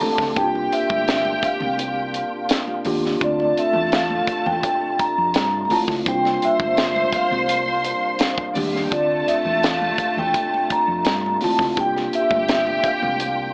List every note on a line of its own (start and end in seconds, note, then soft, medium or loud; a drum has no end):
0.00 0.33 A3 medium
0.00 0.27 A3 medium
0.00 0.27 C4 medium
0.00 13.54 D4 medium
0.00 0.28 D4 medium
0.00 6.02 F4 medium
0.00 0.33 G4 medium
0.00 0.28 A4 medium
0.00 0.30 A5 loud
0.00 open hi-hat medium
0.00 high conga medium
0.00 low conga medium
0.18 0.34 C#2 medium
0.18 kick medium
0.18 snare soft
0.31 0.37 A5 medium
0.35 0.67 C2 loud
0.35 6.02 C3 medium
0.35 1.41 A#3 medium
0.35 3.18 A#3 medium
0.35 1.42 D4 medium
0.35 0.43 E4 medium
0.35 2.81 G4 loud
0.35 1.42 G4 medium
0.35 2.81 G5 loud
0.35 0.73 G5 loud
0.35 kick loud
0.35 closed hi-hat medium
0.43 1.45 F4 medium
0.55 muted conga soft
0.72 1.46 E5 medium
0.72 closed hi-hat medium
0.90 1.36 G1 medium
0.90 kick medium
0.90 high conga medium
1.08 snare loud
1.08 closed hi-hat medium
1.08 muted conga soft
1.25 muted conga soft
1.25 high conga medium
1.43 2.83 F5 medium
1.43 muted fingered electric bass stroke medium
1.43 kick medium
1.43 closed hi-hat medium
1.60 2.22 C2 medium
1.60 high conga medium
1.60 low conga medium
1.79 closed hi-hat loud
1.96 muted conga soft
2.14 closed hi-hat medium
2.49 snare loud
2.49 closed hi-hat medium
2.49 muted conga soft
2.67 muted conga soft
2.85 3.16 D#2 medium
2.85 3.12 A#3 medium
2.85 3.12 D4 medium
2.85 3.12 F4 medium
2.85 3.13 G4 loud
2.85 open hi-hat medium
2.85 high conga medium
2.85 low conga medium
3.05 snare soft
3.20 3.52 D2 medium
3.20 4.26 A3 medium
3.20 6.03 A3 medium
3.20 5.67 A3 loud
3.20 4.26 C4 medium
3.20 4.27 D4 medium
3.20 4.27 F4 medium
3.20 5.67 A5 loud
3.20 kick loud
3.20 closed hi-hat medium
3.20 muted conga soft
3.24 3.59 D5 medium
3.40 muted conga soft
3.57 3.95 E5 medium
3.57 closed hi-hat medium
3.73 4.21 E2 medium
3.73 high conga medium
3.92 4.48 F5 medium
3.92 snare loud
3.92 closed hi-hat medium
3.92 muted conga soft
4.10 muted conga soft
4.10 high conga medium
4.27 muted fingered electric bass stroke soft
4.27 kick loud
4.27 closed hi-hat medium
4.46 4.61 E2 medium
4.46 5.01 G5 medium
4.46 high conga medium
4.46 low conga medium
4.63 kick medium
4.63 closed hi-hat loud
4.63 muted conga soft
4.99 5.64 A#5 loud
4.99 muted fingered electric bass stroke soft
4.99 kick medium
4.99 closed hi-hat medium
5.18 5.33 F2 medium
5.34 5.66 G2 medium
5.34 snare loud
5.34 closed hi-hat loud
5.34 muted conga soft
5.65 5.96 A3 medium
5.65 5.71 A#5 medium
5.70 5.97 C4 medium
5.70 5.97 E4 medium
5.70 5.97 F4 medium
5.70 5.88 A5 loud
5.70 open hi-hat medium
5.70 high conga medium
5.70 low conga medium
5.88 6.04 C#2 medium
5.88 kick medium
5.88 snare soft
6.05 6.37 C2 loud
6.05 8.89 C3 medium
6.05 7.11 G3 medium
6.05 7.12 A#3 medium
6.05 8.89 A#3 medium
6.05 7.12 D4 medium
6.05 6.13 E4 medium
6.05 13.54 F4 medium
6.05 8.44 C5 loud
6.05 6.44 G5 loud
6.05 8.44 C6 loud
6.05 kick loud
6.05 closed hi-hat medium
6.14 7.16 F4 medium
6.25 snare soft
6.25 muted conga soft
6.42 7.17 E5 medium
6.42 closed hi-hat medium
6.60 7.06 G1 medium
6.60 kick medium
6.60 high conga medium
6.77 snare loud
6.77 closed hi-hat medium
6.96 muted conga soft
6.96 high conga medium
7.13 8.53 F5 medium
7.13 muted fingered electric bass stroke soft
7.13 kick medium
7.13 closed hi-hat medium
7.31 7.92 C2 medium
7.31 high conga medium
7.31 low conga medium
7.49 closed hi-hat medium
7.68 muted conga soft
7.84 closed hi-hat medium
8.19 snare loud
8.19 closed hi-hat medium
8.19 muted conga soft
8.38 kick medium
8.54 8.87 D#2 medium
8.54 8.82 G3 medium
8.54 8.82 A#3 medium
8.54 8.64 D4 medium
8.54 8.83 D4 medium
8.54 8.83 G4 loud
8.54 8.64 D5 medium
8.54 open hi-hat medium
8.54 high conga medium
8.54 low conga medium
8.65 8.74 E4 medium
8.65 8.74 E5 medium
8.73 8.82 F4 medium
8.73 8.82 F5 medium
8.73 snare soft
8.83 8.92 G4 medium
8.83 8.92 G5 medium
8.91 9.22 D2 medium
8.91 13.54 C3 medium
8.91 11.37 A3 loud
8.91 9.97 A3 medium
8.91 11.75 A3 medium
8.91 9.98 C4 medium
8.91 9.98 D4 medium
8.91 9.98 F4 medium
8.91 9.29 D5 medium
8.91 11.38 A5 loud
8.91 kick loud
8.91 closed hi-hat medium
9.28 9.64 E5 medium
9.28 closed hi-hat medium
9.45 9.91 E2 medium
9.45 high conga medium
9.63 10.14 F5 medium
9.63 snare loud
9.63 closed hi-hat medium
9.82 muted conga soft
9.82 high conga medium
9.98 muted fingered electric bass stroke soft
9.98 kick medium
9.98 closed hi-hat medium
10.17 10.32 E2 medium
10.17 10.73 G5 loud
10.17 high conga medium
10.17 low conga medium
10.34 kick medium
10.34 closed hi-hat loud
10.34 muted conga soft
10.54 muted conga soft
10.70 11.39 A#5 loud
10.70 muted fingered electric bass stroke soft
10.70 kick medium
10.70 closed hi-hat medium
10.88 11.03 F2 medium
11.05 11.36 G2 medium
11.05 snare loud
11.05 closed hi-hat medium
11.26 muted conga soft
11.40 11.67 A3 medium
11.40 11.68 C4 medium
11.40 11.68 E4 medium
11.40 11.69 F4 medium
11.40 11.76 A5 loud
11.40 open hi-hat medium
11.40 high conga medium
11.40 low conga medium
11.59 11.75 C#2 medium
11.59 kick medium
11.59 snare soft
11.76 12.08 C2 loud
11.76 12.82 A#3 medium
11.76 13.54 A#3 medium
11.76 12.83 D4 medium
11.76 11.84 E4 medium
11.76 13.54 G4 loud
11.76 12.83 G4 medium
11.76 13.54 G5 loud
11.76 kick loud
11.76 closed hi-hat medium
11.80 11.96 G5 loud
11.84 12.87 F4 medium
11.96 snare soft
11.96 muted conga soft
12.13 12.88 E5 loud
12.13 closed hi-hat medium
12.31 12.77 G1 medium
12.31 kick medium
12.31 high conga medium
12.48 snare loud
12.48 closed hi-hat medium
12.67 muted conga soft
12.67 high conga medium
12.84 13.54 F5 medium
12.84 muted fingered electric bass stroke medium
12.84 kick medium
12.84 closed hi-hat medium
13.02 13.54 C2 medium
13.02 high conga medium
13.02 low conga medium
13.20 closed hi-hat loud